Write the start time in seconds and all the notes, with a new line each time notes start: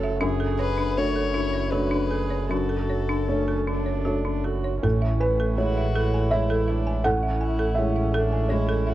Already playing: F#1 F#2 A3 E4 A4 C#5
0.04 E5
0.21 F#1 F#2 D4 G#4
0.40 A4
0.59 B4 C#5
0.78 D4
0.97 A3 D4 F#4 C#5
1.16 A4
1.32 D4 E4
1.53 C#5
1.70 A3 D4 F#4 B4 C#5
1.91 D4
2.09 G#4 A4
2.30 C#5
2.49 F#2 D4 F#4 A4
2.69 A4
2.89 C#5
3.09 D4
3.28 A3 C#4 D4 C#5
3.48 A4
3.67 D4
3.86 C#5
4.05 A3 D4 F#4 C#5
4.25 D4
4.44 F#4 A4
4.64 C#5
4.82 A1 A2 C#4 A4
5.02 E5
5.20 B4 G#5
5.40 A4
5.57 G#3 E4 F#4 C#5
5.78 E5
5.95 E4 A4
6.14 G#5
6.31 G#3 E4 C#5 E5
6.50 A4
6.68 D4 E5
6.87 G#5
7.04 A2 C#4 A4 F#5
7.23 E5
7.41 E4 G#5
7.59 A4
7.75 G#3 C#4 E4 C#5 E5
7.96 E5
8.14 D4 A4
8.32 G#5
8.49 G#3 E4 C#5
8.69 A4
8.87 F#4 E5